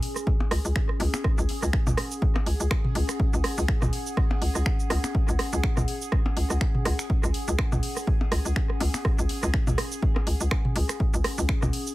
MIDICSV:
0, 0, Header, 1, 6, 480
1, 0, Start_track
1, 0, Tempo, 487805
1, 1225, Time_signature, 4, 2, 24, 8
1, 11756, End_track
2, 0, Start_track
2, 0, Title_t, "Ambient pad"
2, 0, Program_c, 0, 92
2, 0, Note_on_c, 0, 61, 66
2, 0, Note_on_c, 0, 68, 91
2, 0, Note_on_c, 0, 80, 86
2, 1283, Note_on_c, 0, 78, 84
2, 1447, Note_off_c, 0, 80, 0
2, 11756, Note_off_c, 0, 61, 0
2, 11756, Note_off_c, 0, 68, 0
2, 11756, Note_off_c, 0, 78, 0
2, 11756, End_track
3, 0, Start_track
3, 0, Title_t, "Synth texture"
3, 0, Program_c, 1, 99
3, 0, Note_on_c, 1, 68, 84
3, 11756, Note_off_c, 1, 68, 0
3, 11756, End_track
4, 0, Start_track
4, 0, Title_t, "FM bass"
4, 0, Program_c, 2, 39
4, 504, Note_on_c, 2, 37, 80
4, 584, Note_off_c, 2, 37, 0
4, 639, Note_on_c, 2, 37, 86
4, 710, Note_off_c, 2, 37, 0
4, 985, Note_on_c, 2, 37, 101
4, 1065, Note_off_c, 2, 37, 0
4, 1358, Note_on_c, 2, 37, 100
4, 1429, Note_off_c, 2, 37, 0
4, 1600, Note_on_c, 2, 37, 96
4, 1670, Note_off_c, 2, 37, 0
4, 1840, Note_on_c, 2, 37, 83
4, 1910, Note_off_c, 2, 37, 0
4, 2424, Note_on_c, 2, 37, 73
4, 2505, Note_off_c, 2, 37, 0
4, 2560, Note_on_c, 2, 37, 79
4, 2630, Note_off_c, 2, 37, 0
4, 2905, Note_on_c, 2, 37, 93
4, 2985, Note_off_c, 2, 37, 0
4, 3281, Note_on_c, 2, 37, 99
4, 3350, Note_off_c, 2, 37, 0
4, 3521, Note_on_c, 2, 37, 97
4, 3591, Note_off_c, 2, 37, 0
4, 3761, Note_on_c, 2, 37, 78
4, 3830, Note_off_c, 2, 37, 0
4, 4345, Note_on_c, 2, 37, 72
4, 4425, Note_off_c, 2, 37, 0
4, 4480, Note_on_c, 2, 37, 79
4, 4550, Note_off_c, 2, 37, 0
4, 4825, Note_on_c, 2, 37, 98
4, 4905, Note_off_c, 2, 37, 0
4, 5200, Note_on_c, 2, 37, 97
4, 5270, Note_off_c, 2, 37, 0
4, 5440, Note_on_c, 2, 37, 93
4, 5510, Note_off_c, 2, 37, 0
4, 5679, Note_on_c, 2, 37, 81
4, 5750, Note_off_c, 2, 37, 0
4, 6264, Note_on_c, 2, 37, 73
4, 6345, Note_off_c, 2, 37, 0
4, 6399, Note_on_c, 2, 37, 81
4, 6469, Note_off_c, 2, 37, 0
4, 6744, Note_on_c, 2, 37, 102
4, 6824, Note_off_c, 2, 37, 0
4, 7118, Note_on_c, 2, 37, 100
4, 7189, Note_off_c, 2, 37, 0
4, 7359, Note_on_c, 2, 37, 97
4, 7429, Note_off_c, 2, 37, 0
4, 7599, Note_on_c, 2, 37, 83
4, 7670, Note_off_c, 2, 37, 0
4, 8184, Note_on_c, 2, 37, 76
4, 8264, Note_off_c, 2, 37, 0
4, 8319, Note_on_c, 2, 37, 77
4, 8389, Note_off_c, 2, 37, 0
4, 8664, Note_on_c, 2, 37, 97
4, 8744, Note_off_c, 2, 37, 0
4, 9038, Note_on_c, 2, 37, 97
4, 9109, Note_off_c, 2, 37, 0
4, 9279, Note_on_c, 2, 37, 99
4, 9349, Note_off_c, 2, 37, 0
4, 9519, Note_on_c, 2, 37, 83
4, 9590, Note_off_c, 2, 37, 0
4, 10104, Note_on_c, 2, 37, 74
4, 10184, Note_off_c, 2, 37, 0
4, 10239, Note_on_c, 2, 37, 83
4, 10310, Note_off_c, 2, 37, 0
4, 10584, Note_on_c, 2, 37, 98
4, 10665, Note_off_c, 2, 37, 0
4, 10958, Note_on_c, 2, 37, 96
4, 11029, Note_off_c, 2, 37, 0
4, 11199, Note_on_c, 2, 37, 96
4, 11269, Note_off_c, 2, 37, 0
4, 11438, Note_on_c, 2, 37, 81
4, 11509, Note_off_c, 2, 37, 0
4, 11756, End_track
5, 0, Start_track
5, 0, Title_t, "Percussion blips"
5, 398, Note_on_c, 9, 63, 83
5, 496, Note_off_c, 9, 63, 0
5, 983, Note_on_c, 9, 63, 55
5, 1081, Note_off_c, 9, 63, 0
5, 1118, Note_on_c, 9, 63, 76
5, 1216, Note_off_c, 9, 63, 0
5, 1838, Note_on_c, 9, 63, 83
5, 1937, Note_off_c, 9, 63, 0
5, 2319, Note_on_c, 9, 63, 89
5, 2417, Note_off_c, 9, 63, 0
5, 3759, Note_on_c, 9, 63, 81
5, 3858, Note_off_c, 9, 63, 0
5, 4238, Note_on_c, 9, 63, 87
5, 4337, Note_off_c, 9, 63, 0
5, 4823, Note_on_c, 9, 63, 60
5, 4921, Note_off_c, 9, 63, 0
5, 4958, Note_on_c, 9, 63, 72
5, 5056, Note_off_c, 9, 63, 0
5, 5678, Note_on_c, 9, 63, 81
5, 5777, Note_off_c, 9, 63, 0
5, 6157, Note_on_c, 9, 63, 81
5, 6256, Note_off_c, 9, 63, 0
5, 7598, Note_on_c, 9, 63, 74
5, 7697, Note_off_c, 9, 63, 0
5, 8079, Note_on_c, 9, 63, 78
5, 8177, Note_off_c, 9, 63, 0
5, 8664, Note_on_c, 9, 63, 58
5, 8762, Note_off_c, 9, 63, 0
5, 8797, Note_on_c, 9, 63, 71
5, 8896, Note_off_c, 9, 63, 0
5, 9517, Note_on_c, 9, 63, 75
5, 9616, Note_off_c, 9, 63, 0
5, 9998, Note_on_c, 9, 63, 79
5, 10097, Note_off_c, 9, 63, 0
5, 11439, Note_on_c, 9, 63, 76
5, 11537, Note_off_c, 9, 63, 0
5, 11756, End_track
6, 0, Start_track
6, 0, Title_t, "Drums"
6, 25, Note_on_c, 9, 46, 72
6, 123, Note_off_c, 9, 46, 0
6, 157, Note_on_c, 9, 37, 39
6, 160, Note_on_c, 9, 69, 56
6, 256, Note_off_c, 9, 37, 0
6, 258, Note_off_c, 9, 69, 0
6, 264, Note_on_c, 9, 36, 127
6, 363, Note_off_c, 9, 36, 0
6, 503, Note_on_c, 9, 37, 89
6, 505, Note_on_c, 9, 46, 83
6, 601, Note_off_c, 9, 37, 0
6, 603, Note_off_c, 9, 46, 0
6, 639, Note_on_c, 9, 69, 52
6, 738, Note_off_c, 9, 69, 0
6, 744, Note_on_c, 9, 26, 96
6, 745, Note_on_c, 9, 36, 99
6, 843, Note_off_c, 9, 26, 0
6, 843, Note_off_c, 9, 36, 0
6, 878, Note_on_c, 9, 37, 39
6, 976, Note_off_c, 9, 37, 0
6, 984, Note_on_c, 9, 46, 73
6, 1083, Note_off_c, 9, 46, 0
6, 1119, Note_on_c, 9, 26, 73
6, 1119, Note_on_c, 9, 69, 57
6, 1217, Note_off_c, 9, 26, 0
6, 1217, Note_off_c, 9, 69, 0
6, 1223, Note_on_c, 9, 37, 77
6, 1225, Note_on_c, 9, 36, 118
6, 1322, Note_off_c, 9, 37, 0
6, 1323, Note_off_c, 9, 36, 0
6, 1359, Note_on_c, 9, 69, 42
6, 1458, Note_off_c, 9, 69, 0
6, 1464, Note_on_c, 9, 46, 78
6, 1563, Note_off_c, 9, 46, 0
6, 1599, Note_on_c, 9, 37, 37
6, 1600, Note_on_c, 9, 69, 52
6, 1697, Note_off_c, 9, 37, 0
6, 1698, Note_off_c, 9, 69, 0
6, 1705, Note_on_c, 9, 26, 93
6, 1705, Note_on_c, 9, 36, 112
6, 1803, Note_off_c, 9, 26, 0
6, 1803, Note_off_c, 9, 36, 0
6, 1838, Note_on_c, 9, 47, 83
6, 1839, Note_on_c, 9, 69, 41
6, 1937, Note_off_c, 9, 47, 0
6, 1938, Note_off_c, 9, 69, 0
6, 1943, Note_on_c, 9, 37, 83
6, 1945, Note_on_c, 9, 46, 71
6, 2041, Note_off_c, 9, 37, 0
6, 2043, Note_off_c, 9, 46, 0
6, 2080, Note_on_c, 9, 69, 56
6, 2178, Note_off_c, 9, 69, 0
6, 2185, Note_on_c, 9, 36, 125
6, 2283, Note_off_c, 9, 36, 0
6, 2319, Note_on_c, 9, 37, 41
6, 2417, Note_off_c, 9, 37, 0
6, 2425, Note_on_c, 9, 46, 79
6, 2523, Note_off_c, 9, 46, 0
6, 2559, Note_on_c, 9, 69, 56
6, 2657, Note_off_c, 9, 69, 0
6, 2665, Note_on_c, 9, 26, 102
6, 2665, Note_on_c, 9, 36, 107
6, 2665, Note_on_c, 9, 37, 75
6, 2763, Note_off_c, 9, 26, 0
6, 2763, Note_off_c, 9, 36, 0
6, 2763, Note_off_c, 9, 37, 0
6, 2799, Note_on_c, 9, 47, 74
6, 2898, Note_off_c, 9, 47, 0
6, 2905, Note_on_c, 9, 46, 74
6, 3004, Note_off_c, 9, 46, 0
6, 3039, Note_on_c, 9, 37, 39
6, 3040, Note_on_c, 9, 26, 66
6, 3040, Note_on_c, 9, 69, 54
6, 3137, Note_off_c, 9, 37, 0
6, 3138, Note_off_c, 9, 26, 0
6, 3138, Note_off_c, 9, 69, 0
6, 3145, Note_on_c, 9, 36, 114
6, 3243, Note_off_c, 9, 36, 0
6, 3280, Note_on_c, 9, 69, 42
6, 3378, Note_off_c, 9, 69, 0
6, 3385, Note_on_c, 9, 37, 79
6, 3385, Note_on_c, 9, 46, 83
6, 3483, Note_off_c, 9, 37, 0
6, 3484, Note_off_c, 9, 46, 0
6, 3519, Note_on_c, 9, 69, 51
6, 3618, Note_off_c, 9, 69, 0
6, 3625, Note_on_c, 9, 26, 95
6, 3625, Note_on_c, 9, 36, 107
6, 3724, Note_off_c, 9, 26, 0
6, 3724, Note_off_c, 9, 36, 0
6, 3759, Note_on_c, 9, 37, 38
6, 3759, Note_on_c, 9, 47, 78
6, 3760, Note_on_c, 9, 69, 39
6, 3858, Note_off_c, 9, 37, 0
6, 3858, Note_off_c, 9, 47, 0
6, 3858, Note_off_c, 9, 69, 0
6, 3866, Note_on_c, 9, 46, 72
6, 3964, Note_off_c, 9, 46, 0
6, 4000, Note_on_c, 9, 69, 54
6, 4098, Note_off_c, 9, 69, 0
6, 4105, Note_on_c, 9, 36, 120
6, 4105, Note_on_c, 9, 37, 76
6, 4203, Note_off_c, 9, 36, 0
6, 4203, Note_off_c, 9, 37, 0
6, 4346, Note_on_c, 9, 46, 82
6, 4444, Note_off_c, 9, 46, 0
6, 4479, Note_on_c, 9, 37, 39
6, 4480, Note_on_c, 9, 69, 51
6, 4577, Note_off_c, 9, 37, 0
6, 4578, Note_off_c, 9, 69, 0
6, 4585, Note_on_c, 9, 26, 93
6, 4585, Note_on_c, 9, 36, 108
6, 4683, Note_off_c, 9, 26, 0
6, 4683, Note_off_c, 9, 36, 0
6, 4720, Note_on_c, 9, 69, 29
6, 4818, Note_off_c, 9, 69, 0
6, 4823, Note_on_c, 9, 37, 78
6, 4825, Note_on_c, 9, 46, 77
6, 4921, Note_off_c, 9, 37, 0
6, 4923, Note_off_c, 9, 46, 0
6, 4959, Note_on_c, 9, 26, 67
6, 4959, Note_on_c, 9, 69, 52
6, 5058, Note_off_c, 9, 26, 0
6, 5058, Note_off_c, 9, 69, 0
6, 5065, Note_on_c, 9, 36, 120
6, 5163, Note_off_c, 9, 36, 0
6, 5200, Note_on_c, 9, 69, 42
6, 5298, Note_off_c, 9, 69, 0
6, 5303, Note_on_c, 9, 37, 73
6, 5304, Note_on_c, 9, 46, 85
6, 5402, Note_off_c, 9, 37, 0
6, 5403, Note_off_c, 9, 46, 0
6, 5440, Note_on_c, 9, 69, 53
6, 5538, Note_off_c, 9, 69, 0
6, 5545, Note_on_c, 9, 26, 91
6, 5545, Note_on_c, 9, 36, 102
6, 5643, Note_off_c, 9, 26, 0
6, 5643, Note_off_c, 9, 36, 0
6, 5678, Note_on_c, 9, 37, 37
6, 5678, Note_on_c, 9, 47, 74
6, 5680, Note_on_c, 9, 69, 40
6, 5777, Note_off_c, 9, 37, 0
6, 5777, Note_off_c, 9, 47, 0
6, 5778, Note_off_c, 9, 69, 0
6, 5785, Note_on_c, 9, 46, 76
6, 5883, Note_off_c, 9, 46, 0
6, 5920, Note_on_c, 9, 69, 58
6, 6018, Note_off_c, 9, 69, 0
6, 6022, Note_on_c, 9, 37, 79
6, 6025, Note_on_c, 9, 36, 114
6, 6121, Note_off_c, 9, 37, 0
6, 6123, Note_off_c, 9, 36, 0
6, 6265, Note_on_c, 9, 46, 83
6, 6363, Note_off_c, 9, 46, 0
6, 6398, Note_on_c, 9, 37, 40
6, 6398, Note_on_c, 9, 69, 51
6, 6497, Note_off_c, 9, 37, 0
6, 6497, Note_off_c, 9, 69, 0
6, 6504, Note_on_c, 9, 26, 92
6, 6504, Note_on_c, 9, 36, 102
6, 6603, Note_off_c, 9, 26, 0
6, 6603, Note_off_c, 9, 36, 0
6, 6639, Note_on_c, 9, 47, 75
6, 6737, Note_off_c, 9, 47, 0
6, 6745, Note_on_c, 9, 37, 76
6, 6745, Note_on_c, 9, 46, 79
6, 6843, Note_off_c, 9, 37, 0
6, 6843, Note_off_c, 9, 46, 0
6, 6879, Note_on_c, 9, 26, 65
6, 6879, Note_on_c, 9, 69, 53
6, 6978, Note_off_c, 9, 26, 0
6, 6978, Note_off_c, 9, 69, 0
6, 6984, Note_on_c, 9, 36, 115
6, 7083, Note_off_c, 9, 36, 0
6, 7118, Note_on_c, 9, 37, 40
6, 7119, Note_on_c, 9, 69, 43
6, 7217, Note_off_c, 9, 37, 0
6, 7218, Note_off_c, 9, 69, 0
6, 7224, Note_on_c, 9, 46, 88
6, 7322, Note_off_c, 9, 46, 0
6, 7359, Note_on_c, 9, 69, 52
6, 7457, Note_off_c, 9, 69, 0
6, 7464, Note_on_c, 9, 26, 92
6, 7464, Note_on_c, 9, 36, 103
6, 7464, Note_on_c, 9, 37, 80
6, 7562, Note_off_c, 9, 37, 0
6, 7563, Note_off_c, 9, 26, 0
6, 7563, Note_off_c, 9, 36, 0
6, 7598, Note_on_c, 9, 47, 77
6, 7599, Note_on_c, 9, 69, 40
6, 7697, Note_off_c, 9, 47, 0
6, 7697, Note_off_c, 9, 69, 0
6, 7704, Note_on_c, 9, 46, 79
6, 7802, Note_off_c, 9, 46, 0
6, 7839, Note_on_c, 9, 37, 39
6, 7839, Note_on_c, 9, 69, 56
6, 7937, Note_off_c, 9, 37, 0
6, 7937, Note_off_c, 9, 69, 0
6, 7944, Note_on_c, 9, 36, 119
6, 8043, Note_off_c, 9, 36, 0
6, 8184, Note_on_c, 9, 37, 82
6, 8184, Note_on_c, 9, 46, 89
6, 8282, Note_off_c, 9, 37, 0
6, 8282, Note_off_c, 9, 46, 0
6, 8319, Note_on_c, 9, 69, 54
6, 8417, Note_off_c, 9, 69, 0
6, 8424, Note_on_c, 9, 26, 89
6, 8424, Note_on_c, 9, 36, 97
6, 8522, Note_off_c, 9, 26, 0
6, 8523, Note_off_c, 9, 36, 0
6, 8559, Note_on_c, 9, 37, 39
6, 8657, Note_off_c, 9, 37, 0
6, 8664, Note_on_c, 9, 46, 80
6, 8762, Note_off_c, 9, 46, 0
6, 8799, Note_on_c, 9, 26, 66
6, 8799, Note_on_c, 9, 69, 57
6, 8897, Note_off_c, 9, 26, 0
6, 8897, Note_off_c, 9, 69, 0
6, 8904, Note_on_c, 9, 37, 80
6, 8905, Note_on_c, 9, 36, 112
6, 9002, Note_off_c, 9, 37, 0
6, 9003, Note_off_c, 9, 36, 0
6, 9039, Note_on_c, 9, 69, 45
6, 9137, Note_off_c, 9, 69, 0
6, 9144, Note_on_c, 9, 46, 90
6, 9242, Note_off_c, 9, 46, 0
6, 9278, Note_on_c, 9, 37, 42
6, 9278, Note_on_c, 9, 69, 53
6, 9376, Note_off_c, 9, 37, 0
6, 9376, Note_off_c, 9, 69, 0
6, 9384, Note_on_c, 9, 26, 92
6, 9384, Note_on_c, 9, 36, 107
6, 9482, Note_off_c, 9, 26, 0
6, 9483, Note_off_c, 9, 36, 0
6, 9517, Note_on_c, 9, 47, 80
6, 9519, Note_on_c, 9, 69, 43
6, 9616, Note_off_c, 9, 47, 0
6, 9617, Note_off_c, 9, 69, 0
6, 9623, Note_on_c, 9, 37, 88
6, 9624, Note_on_c, 9, 46, 78
6, 9722, Note_off_c, 9, 37, 0
6, 9723, Note_off_c, 9, 46, 0
6, 9759, Note_on_c, 9, 69, 59
6, 9857, Note_off_c, 9, 69, 0
6, 9864, Note_on_c, 9, 36, 120
6, 9963, Note_off_c, 9, 36, 0
6, 9998, Note_on_c, 9, 37, 44
6, 10097, Note_off_c, 9, 37, 0
6, 10104, Note_on_c, 9, 46, 90
6, 10202, Note_off_c, 9, 46, 0
6, 10239, Note_on_c, 9, 69, 59
6, 10337, Note_off_c, 9, 69, 0
6, 10344, Note_on_c, 9, 26, 95
6, 10344, Note_on_c, 9, 36, 99
6, 10344, Note_on_c, 9, 37, 80
6, 10442, Note_off_c, 9, 26, 0
6, 10443, Note_off_c, 9, 36, 0
6, 10443, Note_off_c, 9, 37, 0
6, 10478, Note_on_c, 9, 47, 80
6, 10576, Note_off_c, 9, 47, 0
6, 10584, Note_on_c, 9, 46, 81
6, 10682, Note_off_c, 9, 46, 0
6, 10718, Note_on_c, 9, 37, 41
6, 10719, Note_on_c, 9, 26, 67
6, 10719, Note_on_c, 9, 69, 61
6, 10816, Note_off_c, 9, 37, 0
6, 10817, Note_off_c, 9, 26, 0
6, 10817, Note_off_c, 9, 69, 0
6, 10824, Note_on_c, 9, 36, 111
6, 10923, Note_off_c, 9, 36, 0
6, 10959, Note_on_c, 9, 69, 47
6, 11058, Note_off_c, 9, 69, 0
6, 11064, Note_on_c, 9, 37, 85
6, 11064, Note_on_c, 9, 46, 86
6, 11162, Note_off_c, 9, 37, 0
6, 11162, Note_off_c, 9, 46, 0
6, 11199, Note_on_c, 9, 69, 58
6, 11297, Note_off_c, 9, 69, 0
6, 11304, Note_on_c, 9, 26, 98
6, 11304, Note_on_c, 9, 36, 101
6, 11402, Note_off_c, 9, 26, 0
6, 11403, Note_off_c, 9, 36, 0
6, 11439, Note_on_c, 9, 37, 41
6, 11439, Note_on_c, 9, 47, 80
6, 11439, Note_on_c, 9, 69, 41
6, 11537, Note_off_c, 9, 37, 0
6, 11537, Note_off_c, 9, 47, 0
6, 11537, Note_off_c, 9, 69, 0
6, 11544, Note_on_c, 9, 46, 77
6, 11643, Note_off_c, 9, 46, 0
6, 11679, Note_on_c, 9, 69, 60
6, 11756, Note_off_c, 9, 69, 0
6, 11756, End_track
0, 0, End_of_file